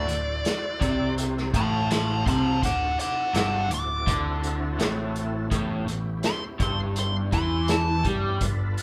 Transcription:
Already playing: E4 F#4 A4 C5 D5
0.08 D1 D2, closed hi-hat
0.45 snare, closed hi-hat
0.81 C2 C3, kick, closed hi-hat
1.18 closed hi-hat
1.38 snare
1.54 A1 A2 A5 C6, kick, closed hi-hat
1.91 A5 C6, snare, closed hi-hat
2.26 C2 C3 A5 C6, kick, closed hi-hat
2.63 D1 D2 C#4 F4 G4 A#4 F#5 D6, kick, closed hi-hat
2.86 C4 E4 F#4 A4
2.99 F#5 D6, closed hi-hat
3.34 G1 G2 F#5 D6, snare, closed hi-hat
3.70 D1 D2, closed hi-hat
3.74 D6
4.07 D2 D3, kick, closed hi-hat
4.44 closed hi-hat
4.78 A1 A2, snare, closed hi-hat
5.16 closed hi-hat
5.51 A1 A2 B3 C#4 E4 G4, kick, closed hi-hat
5.87 A1 A2, closed hi-hat
6.23 C6, snare, closed hi-hat
6.60 G1 G2 C6, kick, closed hi-hat
6.96 C6, closed hi-hat
7.32 E2 E3 C6, kick, closed hi-hat
7.68 A5, snare, closed hi-hat
8.05 G2 G3, kick, closed hi-hat
8.41 G1 G2 D4 F4 A4 B4, kick, closed hi-hat
8.78 closed hi-hat

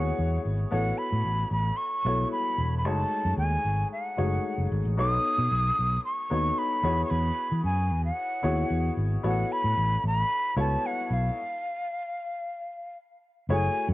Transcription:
Already playing: D#2 B3 E4 F#4 G#4 C#5 F#5
0.19 E2
0.45 G#1
0.71 A1 B3 E4 F#4 A4 C#5 F#5
0.98 B5
1.12 A2
1.25 A1
1.51 A1 B5
1.77 C#6
2.05 B1 B3 E4 F#4 A4 C#5
2.32 B5
2.58 E1
2.78 B5
2.84 F#1 G#3 A3 D#4 F#4 C#5 A5
3.25 F#2
3.37 D#2 G#5
3.65 G#1
3.93 F#5
4.17 F#1 G#3 D#4 F#4 G#4 C#5
4.23 A3
4.58 F#1
4.72 G#1
4.85 A1
4.97 B1 B3 D#4 F#4 A4 C#5 D#6
5.38 B2
5.51 B1
5.79 B1
6.05 C#6
6.30 D#2 B3 D#4 F#4 A4 C#5
6.58 B5
6.83 E2 B3 E4 F#4 G#4 C#5
7.05 C#6
7.10 E2 B5
7.52 E3
7.64 F#2 G#5
7.91 E2
8.05 F#5
8.43 D#2 B3 E4 F#4 G#4 C#5
8.70 E2
8.97 G#1
9.23 A1 B3 E4 F#4 A4 C#5 F#5
9.52 B5
9.64 A2
9.77 A1
10.04 A1 B5
10.57 C#2 B3 E4 F#4 A4 C#5 A5
10.86 F#5
11.11 B1 F5
13.49 F#1 A3 E4 F#4 G#4 C#5 G#5
13.88 F#2

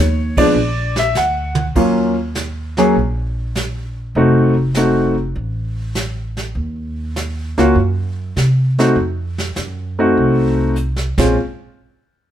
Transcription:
Already playing: D#2 C#5
0.37 F3 G#3 B3 D4 D5, kick, ride
0.55 A#1
0.96 E5, snare
1.15 D2 F#5, snare, hi-hat pedal
1.55 mid tom
1.75 D#2 F#3 A#3 C#4 F4, brush sweep, kick, crash
2.35 snare, hi-hat pedal
2.77 F#3 A#3 C#4 G#4, snare
2.95 A#1, brush sweep
3.55 snare, hi-hat pedal
4.15 F1 A3 C4 D#4 F#4, brush sweep
4.74 A3 C4 D#4 F#4, snare, hi-hat pedal
5.35 A1, brush sweep
5.95 snare, hi-hat pedal
6.37 snare
6.55 D#2, brush sweep
7.16 snare, hi-hat pedal
7.57 C#2 A#3 C#4 F4 F#4, snare
7.75 F#2, brush sweep
8.36 C3, snare, hi-hat pedal
8.78 A3 C4 D#4 F#4, snare
8.96 F2, brush sweep
9.38 snare
9.56 F#2, snare, hi-hat pedal
9.99 A3 C4 D#4 F#4
10.17 C2, brush sweep
10.76 hi-hat pedal
10.96 snare
11.18 A#1 G#3 C4 C#4 F4, kick, snare, crash

